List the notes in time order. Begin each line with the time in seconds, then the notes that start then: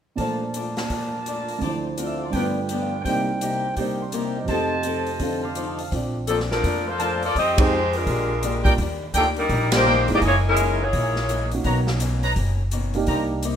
0.16 A#2 F3 D4 F4 A4 A#4 D5 A5, kick, open hi-hat
0.20 A#2 A3 D4 F4 C5
0.54 A#2 A3 D4 F4, closed hi-hat
0.77 A#3 F4, snare, open hi-hat
0.81 D5
0.90 A#2 A3 D4 F4, kick, open hi-hat
1.26 A#2 A3 D4 F4, closed hi-hat
1.48 open hi-hat
1.58 D2 D3 C5 D5 A5, kick, open hi-hat
1.63 F3 A3 C4 E4 F4
1.69 C5
1.97 D3 A3 C4 F4 D5 F5, closed hi-hat
2.07 E5 E6
2.16 F5 D6
2.24 A5 C6
2.30 G2 D3 F4 B4 D5 G5, kick, open hi-hat
2.35 F3 A3 B3 D4 F4
2.41 B4
2.69 G2 F3 B3 D4 D5, closed hi-hat
2.82 F5
2.94 G5
3.04 C2 C3 A#3 D#4 A#4 C5 G5, kick, open hi-hat
3.09 G4 D5
3.41 C3 A#3 D#4 G4, closed hi-hat
3.76 C3 G3 A#3 D4 D#4 G4 C5 D5 G5, kick, open hi-hat
3.81 C5
4.02 C6
4.12 C3 A#3 D#4 G4 A#5, closed hi-hat
4.25 G5
4.37 D#5
4.44 F2 C3 F4 D#5 A5, open hi-hat
4.48 F3 A3 C4 D#4 G4 A4 C5, kick
4.55 D#5
4.83 F3 C4 D#4 A4, closed hi-hat
5.06 open hi-hat
5.19 D3 F3 C4 D#4 A4 F5, kick, open hi-hat
5.42 F5 A5 C6 D6
5.55 F3 C4 D#4 A4 C6 D6, closed hi-hat
5.67 A5 D#6
5.79 F5, open hi-hat
5.91 A#1 A#2 F3 A3 C4 D4 F4, kick, open hi-hat
6.27 A#2 F3 A3 A#3 D4 A4, closed hi-hat
6.40 snare
6.51 F3 D4 A4 A#4, snare
6.63 F2 A#2 F3 A3 D4, kick, open hi-hat
6.87 A#3 F4 A4 C5
6.99 A#2 F3 A3 D4 F4 A#4 D5 A5, closed hi-hat
7.23 A#3 F4 A4 D5, open hi-hat
7.35 F2 F3 G#3 C4 D#4 G4 G#4 D#5, kick, open hi-hat
7.57 G#3 C4 D#4 G4 C5, kick, ride
7.72 F3 G#3 D#4 G4
7.93 G#3 D4 F4 A#4, open hi-hat
8.07 A#1 A#2 G#3 D4 G4, kick, open hi-hat
8.43 A#2 G#3 D4 G4, closed hi-hat
8.64 G3 A#3 D4 D#4 F4 A#4 D5 G5, kick, open hi-hat
8.78 D#2 D#3 A#3 D4, kick, open hi-hat
8.83 G4
9.14 D2 D#3 F3 A#3 D4 D#4 G4 A4 A#4 D5 G5, closed hi-hat
9.36 G3 D4 D#4 A#4, open hi-hat
9.49 A#1 D#3 A#3 D4 G4, kick, open hi-hat
9.72 G3 A#3 D4 D#4 F4, snare, ride
9.76 A#3 G4 C5
9.86 D#3 A#3 D4 D#4 G4 A#4 D5 G5
10.08 G1 G#3 A#3 D#4 E4, open hi-hat
10.13 A#3 D#4 G4 D5
10.21 F#1 F#2 E3 A#3 D#4 E4 A#4 D#5 G#5, kick, open hi-hat
10.26 A#3 E4 G#4 C#5
10.48 G#3 C#4 E4 A#4
10.56 F#2 E3 A#3 D#4, closed hi-hat
10.83 A#3 E4 G#4 C#5
10.93 A#1 F#2 E3 A#3 D#4, kick, open hi-hat
11.16 snare
11.29 F#2 E3 A#3 D#4, closed hi-hat
11.51 A#3 C#4 D#4 F#4, open hi-hat
11.64 B1 B2 D#3 A#3 C#4 D#4 B4 C#5 A#5, kick, open hi-hat
11.87 snare
12.00 B2 D#3 A#3 C#4, closed hi-hat
12.23 D#4 B4 C#5 A#5, open hi-hat
12.36 F#1 B2 D#3 A#3 C#4, kick, open hi-hat
12.71 B2 D#3 A#3 C#4, closed hi-hat
12.94 A#3 D4 D#4 G4, open hi-hat
13.07 C2 C3 G3 A#3 D#4 G4 C5 D#5 A#5, kick, open hi-hat
13.43 C3 G3 A#3 D#4, closed hi-hat